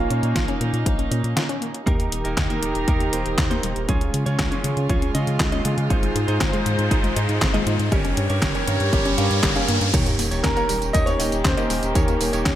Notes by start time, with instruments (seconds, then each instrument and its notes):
Already playing: string section A#3 C#4 D#4, grand piano F4
0.10 analog synth bass A#2, synth arpeggio sound C#4, closed hi-hat
0.23 analog synth bass A#2, closed hi-hat
0.36 analog synth bass A#1, synth arpeggio sound F4, kick, snare, closed hi-hat
0.48 synth arpeggio sound C#4, closed hi-hat
0.61 analog synth bass A#2, synth arpeggio sound A#3, closed hi-hat
0.73 analog synth bass A#2, closed hi-hat
0.86 analog synth bass A#1, synth arpeggio sound F3, kick, closed hi-hat
0.99 synth arpeggio sound C#4, closed hi-hat
1.11 analog synth bass A#2, synth arpeggio sound C#4, closed hi-hat
1.24 analog synth bass A#2, closed hi-hat
1.36 synth arpeggio sound F4, snare, closed hi-hat
1.49 synth arpeggio sound C#4, closed hi-hat
1.62 synth arpeggio sound A#3, closed hi-hat
1.74 closed hi-hat
1.86 analog synth bass D#2, string section D#3 D#4 G4 A#4, synth arpeggio sound D#3, clean electric guitar A#3 D#4 G4 A#4, kick, closed hi-hat, riser
2.00 synth arpeggio sound A#3, closed hi-hat
2.12 analog synth bass D#1, synth arpeggio sound A#3, closed hi-hat
2.24 analog synth bass D#1, clean electric guitar A#3 D#4 G4 A#4, closed hi-hat
2.37 analog synth bass D#2, synth arpeggio sound D#4, kick, snare, clap, closed hi-hat
2.50 synth arpeggio sound A#3, clean electric guitar A#3 D#4 G4 A#4, closed hi-hat
2.62 analog synth bass D#1, synth arpeggio sound G3, closed hi-hat
2.75 analog synth bass D#1, closed hi-hat
2.87 analog synth bass D#2, synth arpeggio sound D#3, clean electric guitar A#3 D#4 G4 A#4, kick, closed hi-hat
3.00 synth arpeggio sound A#3, closed hi-hat
3.13 analog synth bass D#1, synth arpeggio sound A#3, clean electric guitar A#3 D#4 G4 C5, closed hi-hat
3.26 analog synth bass D#1, closed hi-hat
3.38 analog synth bass D#2, synth arpeggio sound D#4, kick, snare, clap, closed hi-hat
3.50 synth arpeggio sound A#3, clean electric guitar A#3 D#4 G4 C5, closed hi-hat
3.63 analog synth bass D#1, synth arpeggio sound G3, closed hi-hat
3.76 analog synth bass D#1, closed hi-hat
3.88 analog synth bass C#2, synth arpeggio sound F3, string section G#3 C#4 F4, clean electric guitar C#4 F4 G#4 C#5, kick, closed hi-hat
4.01 synth arpeggio sound C#4, closed hi-hat
4.14 analog synth bass C#3, synth arpeggio sound C#4, closed hi-hat
4.26 analog synth bass C#3, clean electric guitar C#4 F4 G#4 C#5, closed hi-hat
4.39 analog synth bass C#2, synth arpeggio sound F4, kick, snare, clap, closed hi-hat
4.51 synth arpeggio sound C#4, clean electric guitar C#4 F4 G#4 C#5, closed hi-hat
4.64 analog synth bass C#3, synth arpeggio sound G#3, closed hi-hat
4.77 analog synth bass C#3, closed hi-hat
4.89 analog synth bass C#2, synth arpeggio sound F3, clean electric guitar C#4 F4 G#4 C#5, kick, closed hi-hat
5.02 synth arpeggio sound C#4, closed hi-hat
5.14 analog synth bass C#3, synth arpeggio sound C#4, clean electric guitar C#4 F4 G#4 D#5, closed hi-hat
5.27 analog synth bass C#3, closed hi-hat
5.40 analog synth bass C#2, synth arpeggio sound F4, kick, snare, clap, closed hi-hat
5.52 synth arpeggio sound C#4, clean electric guitar C#4 F4 G#4 D#5, closed hi-hat
5.65 analog synth bass C#3, synth arpeggio sound G#3, closed hi-hat
5.78 analog synth bass C#3, closed hi-hat
5.90 analog synth bass G#1, synth arpeggio sound D#3, clean electric guitar D#4 F4 G#4 C5, string section D#4 C5, kick, closed hi-hat
6.03 synth arpeggio sound G#3, closed hi-hat
6.15 analog synth bass G#2, synth arpeggio sound G#3, closed hi-hat
6.28 analog synth bass G#2, clean electric guitar D#4 F4 G#4 C5, closed hi-hat
6.41 analog synth bass G#1, synth arpeggio sound C4, kick, snare, clap, closed hi-hat
6.53 synth arpeggio sound G#3, clean electric guitar D#4 F4 G#4 C5, closed hi-hat
6.66 analog synth bass G#2, synth arpeggio sound F3, closed hi-hat
6.79 analog synth bass G#2, closed hi-hat
6.91 analog synth bass G#1, synth arpeggio sound D#3, clean electric guitar D#4 F4 G#4 C5, kick, closed hi-hat
7.04 synth arpeggio sound G#3, closed hi-hat
7.16 analog synth bass G#2, synth arpeggio sound G#3, clean electric guitar D#4 F4 G#4 D#5, closed hi-hat
7.29 analog synth bass G#2, closed hi-hat
7.41 analog synth bass G#1, synth arpeggio sound C4, kick, snare, clap, closed hi-hat
7.54 synth arpeggio sound G#3, clean electric guitar D#4 F4 G#4 D#5, closed hi-hat
7.67 analog synth bass G#2, synth arpeggio sound F3, closed hi-hat
7.79 analog synth bass G#2, closed hi-hat
7.91 analog synth bass G1, string section G3 G4 A#4 C#5, synth arpeggio sound G3, clean electric guitar C#4 G4 A#4 C#5, kick, closed hi-hat
8.05 synth arpeggio sound C#4, closed hi-hat
8.17 analog synth bass G2, synth arpeggio sound C#4, closed hi-hat
8.29 analog synth bass G2, clean electric guitar C#4 G4 A#4 C#5, closed hi-hat
8.42 analog synth bass G1, synth arpeggio sound G4, kick, snare, clap, closed hi-hat
8.55 synth arpeggio sound C#4, clean electric guitar C#4 G4 A#4 C#5, closed hi-hat
8.68 analog synth bass G2, synth arpeggio sound A#3, closed hi-hat
8.80 analog synth bass G2, closed hi-hat
8.93 analog synth bass G1, synth arpeggio sound G3, clean electric guitar C#4 G4 A#4 C#5, kick, closed hi-hat
9.05 synth arpeggio sound C#4, closed hi-hat
9.18 analog synth bass G2, synth arpeggio sound C#4, clean electric guitar C#4 G4 A#4 F5, closed hi-hat
9.31 analog synth bass G2, closed hi-hat
9.43 analog synth bass G1, synth arpeggio sound G4, kick, snare, clap, closed hi-hat
9.56 synth arpeggio sound C#4, clean electric guitar C#4 G4 A#4 F5, closed hi-hat
9.68 analog synth bass G2, synth arpeggio sound A#3, closed hi-hat
9.81 analog synth bass G2, closed hi-hat
9.93 analog synth bass D#2, synth arpeggio sound D#3, string section D#3 A#3 C#4 G4, clean electric guitar D#4 G4 A#4 C#5, kick, closed hi-hat, tambourine, crash, sub drop
10.06 synth arpeggio sound A#3, closed hi-hat, tambourine
10.19 analog synth bass D#1, synth arpeggio sound A#3, open hi-hat, tambourine
10.31 analog synth bass D#1, clean electric guitar D#4 G4 A#4 C#5, closed hi-hat, tambourine
10.43 analog synth bass D#2, synth arpeggio sound C#4, grand piano A#4, kick, snare, clap, closed hi-hat, tambourine
10.55 synth arpeggio sound A#3, clean electric guitar D#4 G4 A#4 C#5, grand piano A#4, closed hi-hat, tambourine
10.69 analog synth bass D#1, synth arpeggio sound G3, open hi-hat, tambourine
10.82 analog synth bass D#1, closed hi-hat, tambourine
10.93 analog synth bass D#2, synth arpeggio sound D#3, clean electric guitar D#4 G4 A#4 C#5, grand piano D#5, kick, closed hi-hat, tambourine
11.06 synth arpeggio sound A#3, grand piano C#5, closed hi-hat, tambourine
11.19 analog synth bass D#1, synth arpeggio sound A#3, clean electric guitar D#4 G4 A#4 D#5, open hi-hat, tambourine
11.32 analog synth bass D#1, closed hi-hat, tambourine
11.44 analog synth bass D#2, synth arpeggio sound C#4, grand piano C5, kick, snare, clap, closed hi-hat, tambourine
11.57 synth arpeggio sound A#3, clean electric guitar D#4 G4 A#4 D#5, closed hi-hat, tambourine
11.70 analog synth bass D#1, synth arpeggio sound G3, open hi-hat, tambourine
11.83 analog synth bass D#1, closed hi-hat, tambourine
11.94 analog synth bass D#2, synth arpeggio sound D#3, clean electric guitar D#4 G4 A#4 C#5, grand piano A#4, kick, closed hi-hat, tambourine
12.08 synth arpeggio sound A#3, closed hi-hat, tambourine
12.21 analog synth bass D#1, synth arpeggio sound A#3, open hi-hat, tambourine
12.33 analog synth bass D#1, clean electric guitar D#4 G4 A#4 C#5, closed hi-hat, tambourine
12.46 analog synth bass D#2, synth arpeggio sound C#4, kick, snare, clap, closed hi-hat, tambourine